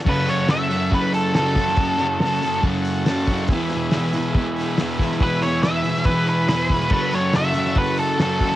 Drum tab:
CC |x---------------|----------------|----------------|----------------|
HH |--o-o-o-o-o-o-o-|o-o-o-o-o-o-o-o-|o-o-o-o-o-o-o-o-|o-o-o-o-o-o-o-o-|
SD |----o-------o--o|----o-------o---|----o-------o--o|----o--o----o--o|
BD |o-------o-----o-|o-------o-----o-|o-------o-----o-|o-------o-----o-|

CC |x---------------|
HH |--o-o-o-o-o-o-o-|
SD |----o--o----o--o|
BD |o-------o-----o-|